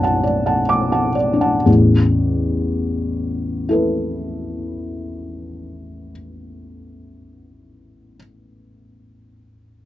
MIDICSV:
0, 0, Header, 1, 2, 480
1, 0, Start_track
1, 0, Tempo, 892857
1, 376, Tempo, 970874
1, 856, Time_signature, 3, 2, 24, 8
1, 856, Tempo, 1003344
1, 4771, End_track
2, 0, Start_track
2, 0, Title_t, "Felt piano"
2, 0, Program_c, 0, 0
2, 0, Control_c, 0, 64, 127
2, 0, Note_on_c, 0, 35, 48
2, 0, Note_on_c, 0, 42, 36
2, 0, Note_on_c, 0, 62, 35
2, 0, Note_on_c, 0, 74, 37
2, 0, Note_on_c, 0, 78, 35
2, 0, Note_on_c, 0, 81, 41
2, 18, Note_off_c, 0, 78, 0
2, 18, Note_on_c, 0, 78, 36
2, 23, Note_off_c, 0, 81, 0
2, 23, Note_on_c, 0, 81, 36
2, 123, Note_off_c, 0, 78, 0
2, 125, Note_off_c, 0, 81, 0
2, 126, Note_off_c, 0, 74, 0
2, 126, Note_on_c, 0, 74, 37
2, 248, Note_on_c, 0, 78, 33
2, 251, Note_on_c, 0, 81, 37
2, 323, Note_off_c, 0, 74, 0
2, 361, Note_off_c, 0, 78, 0
2, 362, Note_off_c, 0, 81, 0
2, 371, Note_on_c, 0, 86, 52
2, 485, Note_on_c, 0, 81, 36
2, 486, Note_on_c, 0, 78, 32
2, 561, Note_off_c, 0, 86, 0
2, 596, Note_off_c, 0, 78, 0
2, 596, Note_off_c, 0, 81, 0
2, 599, Note_on_c, 0, 74, 35
2, 689, Note_off_c, 0, 62, 0
2, 689, Note_on_c, 0, 62, 33
2, 728, Note_on_c, 0, 78, 35
2, 728, Note_on_c, 0, 81, 35
2, 801, Note_off_c, 0, 74, 0
2, 838, Note_off_c, 0, 35, 0
2, 841, Note_off_c, 0, 78, 0
2, 841, Note_off_c, 0, 81, 0
2, 849, Note_on_c, 0, 40, 38
2, 850, Note_on_c, 0, 33, 37
2, 855, Note_off_c, 0, 62, 0
2, 867, Control_c, 0, 64, 0
2, 869, Note_off_c, 0, 42, 0
2, 980, Control_c, 0, 64, 127
2, 1821, Note_on_c, 0, 64, 31
2, 1829, Note_on_c, 0, 69, 33
2, 1838, Note_on_c, 0, 71, 33
2, 2981, Note_off_c, 0, 40, 0
2, 2982, Note_off_c, 0, 33, 0
2, 3953, Note_off_c, 0, 64, 0
2, 3961, Note_off_c, 0, 69, 0
2, 3970, Note_off_c, 0, 71, 0
2, 4771, End_track
0, 0, End_of_file